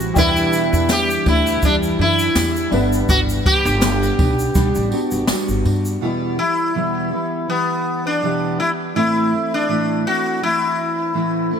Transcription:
0.00 0.15 E3 medium
0.00 0.12 G3 medium
0.00 0.16 G3 medium
0.00 0.12 C4 medium
0.00 0.16 C4 medium
0.00 0.13 E4 medium
0.00 0.16 E4 medium
0.00 0.18 F#4 loud
0.00 0.14 A4 medium
0.00 shaker medium
0.14 0.89 E2 medium
0.14 0.46 E2 loud
0.14 0.89 B2 medium
0.14 0.88 E3 medium
0.14 0.89 G3 medium
0.14 2.68 D4 medium
0.14 0.90 D4 medium
0.14 2.68 E4 medium
0.14 0.89 E4 medium
0.14 2.67 G4 medium
0.14 kick loud
0.14 tambourine soft
0.14 shaker medium
0.18 0.91 E4 loud
0.18 2.69 B4 medium
0.36 shaker medium
0.53 tambourine soft
0.53 shaker medium
0.73 1.16 E2 loud
0.73 shaker medium
0.89 1.26 E3 medium
0.89 1.26 G3 medium
0.89 1.25 D4 medium
0.89 1.24 E4 medium
0.89 1.28 G4 loud
0.89 snare loud
0.89 tambourine medium
0.89 shaker medium
1.10 shaker medium
1.26 1.56 D2 loud
1.26 1.61 E3 soft
1.26 1.61 G3 soft
1.26 1.62 D4 medium
1.26 1.62 E4 medium
1.26 1.65 E4 medium
1.26 kick medium
1.26 tambourine soft
1.47 shaker medium
1.62 1.93 E2 medium
1.62 1.99 E3 medium
1.62 1.99 G3 medium
1.62 1.98 D4 medium
1.62 1.75 D4 medium
1.62 1.97 E4 medium
1.62 kick medium
1.62 tambourine soft
1.62 shaker medium
1.83 shaker medium
1.98 2.29 F#2 medium
1.98 2.34 E3 soft
1.98 2.35 D4 medium
1.98 2.35 E4 medium
1.98 2.69 E4 medium
2.19 shaker medium
2.35 2.66 E2 loud
2.35 2.72 E3 medium
2.35 2.72 G3 medium
2.35 2.71 D4 medium
2.35 2.73 E4 medium
2.35 snare loud
2.35 tambourine medium
2.35 shaker medium
2.56 shaker medium
2.70 3.02 G1 loud
2.70 5.60 G3 medium
2.70 3.81 G3 medium
2.70 3.82 B3 medium
2.70 5.61 D4 medium
2.70 3.81 D4 medium
2.70 5.62 B4 medium
2.70 5.61 F#5 medium
2.70 tambourine soft
2.93 shaker medium
3.09 3.39 G1 loud
3.09 3.19 F#4 loud
3.09 kick loud
3.09 tambourine soft
3.09 shaker medium
3.29 shaker medium
3.46 4.88 G4 loud
3.46 kick loud
3.46 tambourine soft
3.65 4.09 G1 loud
3.65 shaker medium
3.81 4.18 G3 medium
3.81 4.19 B3 medium
3.81 4.18 D4 medium
3.81 snare loud
3.81 tambourine medium
3.81 shaker medium
4.03 shaker medium
4.19 4.49 B1 medium
4.19 4.54 B3 soft
4.19 4.55 D4 soft
4.19 kick loud
4.19 tambourine soft
4.39 shaker medium
4.54 4.72 B1 medium
4.54 4.91 G3 medium
4.54 4.92 B3 medium
4.54 4.91 D4 medium
4.54 kick medium
4.54 snare soft
4.54 tambourine soft
4.54 shaker medium
4.75 4.89 A1 medium
4.75 shaker medium
4.91 5.27 B3 soft
4.91 5.28 D4 medium
4.91 5.28 F#4 medium
4.91 tambourine soft
5.11 5.26 G1 medium
5.11 shaker medium
5.27 6.02 G3 medium
5.27 6.02 B3 medium
5.27 6.02 D4 medium
5.27 6.02 F#4 medium
5.27 muted upright bass stroke soft
5.27 snare loud
5.27 tambourine medium
5.27 shaker medium
5.48 5.62 G1 medium
5.48 shaker medium
5.65 5.95 G2 loud
5.65 tambourine soft
5.85 shaker medium
6.01 6.38 E2 medium
6.01 6.38 B2 medium
6.01 6.38 E3 medium
6.01 6.38 G3 medium
6.01 6.38 B3 medium
6.01 6.37 E4 medium
6.38 6.74 G3 soft
6.38 6.75 B3 soft
6.38 6.75 E4 soft
6.38 7.49 E4 medium
6.74 7.11 E2 medium
6.74 7.12 B2 medium
6.74 7.12 E3 medium
6.74 7.12 G3 medium
6.74 7.11 B3 medium
6.74 7.10 E4 medium
7.11 7.47 E3 soft
7.11 7.47 G3 soft
7.11 7.48 B3 soft
7.11 7.48 E4 medium
7.48 8.22 E3 medium
7.48 8.22 G3 medium
7.48 8.22 B3 medium
7.48 8.06 B3 medium
7.48 8.23 E4 medium
8.07 8.59 D4 medium
8.22 8.58 E2 medium
8.22 8.59 B2 medium
8.22 8.59 E3 medium
8.22 8.59 G3 medium
8.22 8.58 B3 medium
8.22 8.57 E4 medium
8.58 8.94 E3 soft
8.58 8.96 G3 soft
8.58 8.95 B3 soft
8.58 8.95 E4 soft
8.58 8.69 E4 medium
8.95 9.32 A2 medium
8.95 9.32 E3 medium
8.95 9.32 A3 medium
8.95 9.31 C4 medium
8.95 9.54 E4 medium
8.95 9.30 E4 medium
9.31 9.68 A3 soft
9.31 9.68 C4 soft
9.31 9.68 E4 soft
9.54 10.03 D4 medium
9.68 10.05 A2 medium
9.68 10.05 E3 medium
9.68 10.05 A3 medium
9.68 10.05 C4 medium
9.68 10.03 E4 medium
10.05 10.41 A3 soft
10.05 10.42 C4 soft
10.05 10.41 E4 soft
10.05 10.43 F#4 medium
10.41 11.14 E3 medium
10.41 11.15 A3 medium
10.41 11.15 C4 medium
10.41 11.15 E4 medium
10.41 11.48 E4 medium
11.14 11.51 A2 medium
11.14 11.51 E3 medium
11.14 11.52 A3 medium
11.14 11.51 C4 medium
11.14 11.50 E4 medium
11.51 11.60 A3 soft
11.51 11.60 C4 medium
11.51 11.60 E4 medium

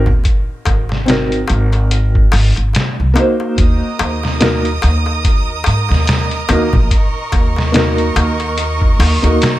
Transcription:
0.06 0.23 D#2 medium
0.06 kick medium
0.06 darbuka tek soft
0.06 darbuka dum medium
0.24 kick loud
0.24 closed hi-hat medium
0.24 darbuka tek soft
0.65 1.46 G#1 medium
0.65 kick medium
0.65 closed hi-hat medium
0.65 darbuka tek medium
0.89 snare soft
0.89 darbuka tek soft
1.06 2.50 C4 medium
1.06 2.51 D#4 medium
1.06 2.51 F#4 medium
1.06 closed hi-hat medium
1.06 darbuka tek soft
1.10 2.52 A#4 medium
1.10 snare loud
1.32 closed hi-hat soft
1.48 2.30 G#1 medium
1.48 closed hi-hat medium
1.48 darbuka tek medium
1.73 closed hi-hat soft
1.73 darbuka tek medium
1.91 closed hi-hat medium
1.91 darbuka tek soft
2.15 kick medium
2.32 2.54 G#1 medium
2.32 open hi-hat medium
2.32 darbuka tek medium
2.56 2.73 G#1 medium
2.56 closed hi-hat soft
2.56 darbuka tek soft
2.73 snare loud
2.73 closed hi-hat medium
2.73 darbuka tek soft
3.00 3.15 C2 medium
3.14 4.36 A#3 medium
3.14 4.37 D#4 medium
3.14 4.37 F#4 medium
3.14 closed hi-hat medium
3.14 darbuka tek medium
3.19 4.38 C5 loud
3.40 darbuka tek medium
3.58 3.79 D#2 medium
3.58 9.59 A#4 medium
3.58 9.59 D#5 medium
3.58 6.88 D#6 medium
3.58 kick loud
3.58 closed hi-hat medium
3.58 darbuka tek soft
3.99 4.80 D#2 medium
3.99 closed hi-hat medium
3.99 darbuka tek medium
4.23 snare soft
4.23 darbuka tek soft
4.40 4.64 A#3 medium
4.40 4.65 D#4 medium
4.40 4.65 F#4 medium
4.40 4.65 A#4 medium
4.40 snare loud
4.40 closed hi-hat medium
4.40 darbuka tek soft
4.65 closed hi-hat soft
4.82 5.63 D#2 medium
4.82 closed hi-hat medium
4.82 darbuka tek medium
5.06 darbuka tek medium
5.25 kick loud
5.25 closed hi-hat medium
5.25 darbuka tek soft
5.64 5.87 G#2 medium
5.64 closed hi-hat medium
5.64 darbuka tek medium
5.89 6.46 D#2 medium
5.89 snare soft
5.89 darbuka tek soft
6.06 snare loud
6.06 closed hi-hat medium
6.06 darbuka tek soft
6.31 closed hi-hat soft
6.49 6.71 D#2 loud
6.49 6.73 A#3 medium
6.49 6.73 D#4 medium
6.49 6.74 F#4 medium
6.49 6.74 A#4 loud
6.49 closed hi-hat medium
6.49 darbuka tek medium
6.73 6.89 A#1 medium
6.73 kick medium
6.73 darbuka tek medium
6.73 darbuka dum medium
6.91 9.59 C#6 medium
6.91 kick loud
6.91 closed hi-hat medium
6.91 darbuka tek soft
7.32 8.13 D#2 medium
7.32 kick medium
7.32 closed hi-hat medium
7.32 darbuka tek medium
7.56 snare soft
7.56 darbuka tek soft
7.72 9.16 A#3 medium
7.72 9.17 D#4 medium
7.72 9.18 F#4 medium
7.72 snare loud
7.72 closed hi-hat medium
7.72 darbuka tek soft
7.77 9.19 A#4 medium
7.98 closed hi-hat soft
8.16 8.96 D#2 medium
8.16 closed hi-hat medium
8.16 darbuka tek medium
8.40 closed hi-hat soft
8.40 darbuka tek soft
8.57 closed hi-hat medium
8.57 darbuka tek soft
8.82 kick loud
8.99 9.20 D#2 medium
8.99 open hi-hat medium
8.99 darbuka tek medium
9.22 9.39 D#2 medium
9.22 9.55 A#3 medium
9.22 9.55 D#4 medium
9.22 9.56 F#4 medium
9.22 9.56 A#4 medium
9.22 closed hi-hat soft
9.22 darbuka tek soft
9.41 snare loud
9.41 closed hi-hat medium
9.41 darbuka tek soft

